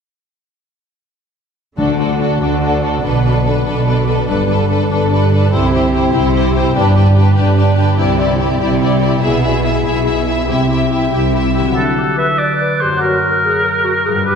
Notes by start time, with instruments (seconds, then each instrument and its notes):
1.78 double bass section D2, cello section D3, timpani D3, harp D3, viola section D4, violin section F#4 A4
1.99 harp A3, viola section D4, violin section F#4 A4
2.20 viola section D4, violin section F#4 A4, harp F#4
2.41 double bass section D2, cello section D3, viola section D4, violin section F#4 A4, harp D5
2.62 viola section D4, violin section F#4 A4, harp F#5
2.83 viola section D4, violin section F#4 A4, harp D5
3.04 double bass section B1, cello section B2, harp B2, viola section D4, violin section A4 B4
3.25 harp F#3, viola section D4, violin section A4 B4
3.45 viola section D4, harp D4, violin section A4 B4
3.66 double bass section B1, cello section B2, viola section D4, violin section A4 B4, harp A4
3.86 viola section D4, violin section A4 B4, harp D5
4.06 viola section D4, violin section A4 B4, harp A4
4.28 double bass section G1, cello section G2, harp G2, viola section D4, violin section A4 B4
4.48 harp D3, viola section D4, violin section A4 B4
4.69 viola section D4, harp D4, violin section A4 B4
4.90 double bass section G1, cello section G2, viola section D4, harp A4, violin section A4 B4
5.11 viola section D4, violin section A4 B4, harp D5
5.32 viola section D4, harp A4, violin section A4 B4
5.52 double bass section C2, cello section C3, harp C3, viola section E4, violin section G4 C5
5.73 harp C4, viola section E4, violin section G4 C5
5.92 viola section E4, harp E4, violin section G4 C5
6.13 double bass section C2, cello section C3, viola section E4, violin section G4 C5, harp G4
6.34 viola section E4, violin section G4 C5, harp E5
6.54 viola section E4, violin section G4 C5, harp G4
6.74 double bass section G1, cello section G2, harp G2, viola section D4, violin section G4 B4
6.96 harp D3, viola section D4, violin section G4 B4
7.15 harp D4, viola section D4, violin section G4 B4
7.35 double bass section G1, cello section G2, viola section D4, violin section G4 B4, harp G4
7.56 viola section D4, violin section G4 B4, harp D5
7.76 viola section D4, violin section G4 B4, harp G4
7.98 double bass section C2, cello section C3, harp C3, viola section E4, violin section G4 D5
8.18 harp C4, viola section E4, violin section G4 D5
8.38 harp E4, viola section E4, violin section G4 D5
8.60 double bass section C2, cello section C3, viola section E4, violin section G4 D5, harp G4
8.81 viola section E4, violin section G4 D5, harp E5
9.01 viola section E4, violin section G4 D5, harp G4
9.21 double bass section B1, cello section B2, harp B2, viola section E4, violin section G#4 E5
9.42 harp B3, viola section E4, violin section G#4 E5
9.63 viola section E4, harp E4, violin section G#4 E5
9.85 double bass section B1, cello section B2, viola section E4, violin section G#4 E5, harp G#4
10.05 viola section E4, violin section G#4 E5, harp E5
10.27 viola section E4, violin section G#4 E5, harp G#4
10.48 double bass section C2, harp C3, cello section C3, viola section E4, violin section G4 E5
10.69 harp C4, viola section E4, violin section G4 E5
10.90 viola section E4, harp E4, violin section G4 E5
11.11 double bass section C2, cello section C3, viola section E4, violin section G4 E5, harp G4
11.32 viola section E4, violin section G4 E5, harp E5
11.54 viola section E4, violin section G4 E5, harp G4
11.58 harp D3
11.63 harp F#3
11.67 harp F#4
11.72 oboe A4, harp D5
11.76 clarinet D4, flute F#6
11.98 clarinet G4
12.17 clarinet B4, oboe E5
12.38 oboe D5, clarinet D5
12.61 clarinet B4
12.81 harp F#2, clarinet G4, oboe C5
12.88 harp A#3
12.92 harp F#4
12.97 clarinet F#4, oboe A#4, harp C#5
13.21 clarinet A#4
13.44 clarinet G#4
13.64 clarinet A#4
13.84 clarinet F#4
14.05 harp G2, clarinet G#4
14.12 harp G3
14.17 harp D4
14.21 clarinet G4, harp B4, oboe B4
14.26 flute D6